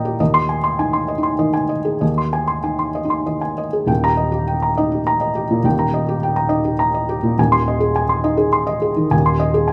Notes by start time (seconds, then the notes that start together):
Already playing: D#2 A#2 D#4 D#5 G5 A#5 D#6 G6 A#6
0.05 G4
0.20 D#2 D#5
0.34 C6
0.49 G#5
0.64 C6
0.79 D#4 G#5
0.93 C6
1.08 D#5
1.18 D#4
1.23 C6
1.39 D#3 D#5
1.54 G#5
1.69 D#5
1.85 G#4
2.01 D#2 D#5
2.18 C6
2.33 G#5
2.48 C6
2.63 D#4 G#5
2.79 C6
2.95 D#5
3.05 D#4
3.10 C6
3.26 D#3 D#5
3.41 G#5
3.58 D#5
3.73 G#4
3.86 D#1 D#2 G5
4.04 A#5
4.17 D#5
4.32 G4
4.47 G5
4.62 A#5
4.78 D#4 D#5
4.92 G4
5.07 A#5
5.21 D#5
5.35 G4
5.51 A#2
5.63 D#1 D#2 G5
5.79 A#5
5.94 D#5
6.08 G4
6.23 G5
6.36 A#5
6.49 D#4 D#5
6.65 G4
6.79 A#5
6.94 D#5
7.09 G4
7.23 A#2
7.38 D#1 D#2 G#5
7.52 C6
7.68 D#5
7.80 G#4
7.96 G#5
8.09 C6
8.24 D#4 D#5
8.37 G#4
8.53 C6
8.67 D#5
8.82 G#4
8.96 D#3
9.10 D#1 D#2 G#5
9.26 C6
9.40 D#5
9.54 G#4
9.68 G#5